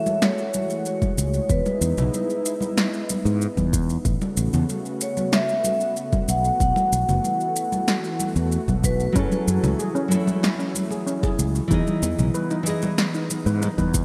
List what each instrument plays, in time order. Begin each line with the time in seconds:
Already playing: analog synth pad E3 G#3 A3 F#4, vibraphone E5
0.06 high conga, shaker
0.22 vibraphone C#5, snare, shaker
0.38 shaker
0.54 high conga, shaker
0.70 shaker
0.86 vibraphone C#5, shaker
1.02 kick, high conga, shaker
1.18 fretless electric bass C#2, shaker
1.34 shaker
1.49 fretless electric bass E2, analog synth pad B3 D#4 E4, vibraphone B4, kick, shaker
1.66 high conga, shaker
1.81 fretless electric bass E2, shaker
1.97 fretless electric bass B1, low conga, shaker
2.14 vibraphone B4, high conga, shaker
2.30 shaker
2.46 shaker
2.61 high conga, shaker
2.78 snare, shaker
2.94 shaker
3.09 high conga, shaker
3.25 fretless electric bass G#2, shaker
3.42 shaker
3.57 fretless electric bass E2, kick, high conga, shaker
3.73 kick, shaker
3.90 shaker
4.04 fretless electric bass A1, analog synth pad C#3 A3 F#4, kick, shaker
4.21 high conga, shaker
4.37 fretless electric bass A1, shaker
4.53 fretless electric bass E2, low conga, shaker
4.69 high conga, shaker
4.86 shaker
5.01 vibraphone C#5, shaker
5.17 high conga, shaker
5.33 vibraphone E5, snare, shaker
5.49 shaker
5.64 high conga, shaker
5.81 shaker
5.97 shaker
6.13 kick, high conga, shaker
6.28 fretless electric bass B1, analog synth pad E3, vibraphone F#5, shaker
6.45 shaker
6.60 fretless electric bass B1, vibraphone F#5, kick, shaker
6.76 high conga, shaker
6.92 fretless electric bass B1, shaker
7.09 fretless electric bass F#1, low conga, shaker
7.24 high conga, shaker
7.40 shaker
7.56 shaker
7.72 high conga, shaker
7.88 snare, shaker
8.04 shaker
8.20 high conga, shaker
8.36 fretless electric bass E2, shaker
8.52 shaker
8.68 fretless electric bass B1, kick, high conga, shaker
8.84 vibraphone B4, kick, shaker
9.00 shaker
9.12 fretless electric bass F#2, analog synth pad E3, nylon-string guitar F#3 E4, steel pan C#4, kick, shaker
9.17 nylon-string guitar G#4 A4
9.32 muted conga, high conga, shaker
9.48 fretless electric bass F#2, shaker
9.63 fretless electric bass C#2, muted conga, low conga, shaker
9.79 steel pan G#4, high conga, shaker
9.95 steel pan C#4, shaker
10.08 nylon-string guitar F#3 E4, steel pan A4, muted conga, shaker
10.12 nylon-string guitar A3 G#5
10.27 high conga, shaker
10.43 snare, muted conga, shaker
10.59 steel pan C#4, shaker
10.75 high conga, shaker
10.91 steel pan G#4, muted conga, shaker
11.07 steel pan C#4, shaker
11.23 steel pan G#4, kick, muted conga, high conga, shaker
11.39 fretless electric bass C#2, shaker
11.55 shaker
11.68 fretless electric bass E2, nylon-string guitar E3, analog synth pad B3, steel pan D#4, kick, muted conga, shaker
11.72 nylon-string guitar G#4 D#5
11.87 high conga, shaker
12.02 fretless electric bass E2, muted conga, shaker
12.19 fretless electric bass B1, low conga, shaker
12.34 steel pan B4, high conga, shaker
12.51 steel pan D#4, muted conga, shaker
12.63 nylon-string guitar E3, steel pan D#5, shaker
12.68 nylon-string guitar G#4 D#5
12.82 muted conga, high conga, shaker
12.98 snare, shaker
13.15 steel pan D#4, shaker
13.30 muted conga, high conga, shaker
13.46 fretless electric bass G#2, steel pan B4, shaker
13.62 steel pan D#4, muted conga, shaker
13.78 fretless electric bass E2, steel pan B4, kick, high conga, shaker
13.94 kick, shaker